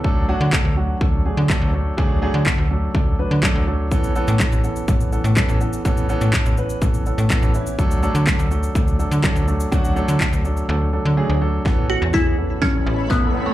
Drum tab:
SH |----------------|----------------|xxxxxxxxxxxxxxxx|xxxxxxxxxxxxxxxx|
CP |----x-------x---|----x-------x---|----x-------x---|----x-------x---|
SD |----o-------o---|----o-------o---|----o-------o---|----o-------o---|
BD |o---o---o---o---|o---o---o---o---|o---o---o---o---|o---o---o---o---|

SH |xxxxxxxxxxxxxxxx|xxxxxxxx--------|----------------|
CP |----x-------x---|----x-----------|----------------|
SD |----o-------o---|----o-----------|o---o---o---o---|
BD |o---o---o---o---|o---o-----------|o---o---o---o---|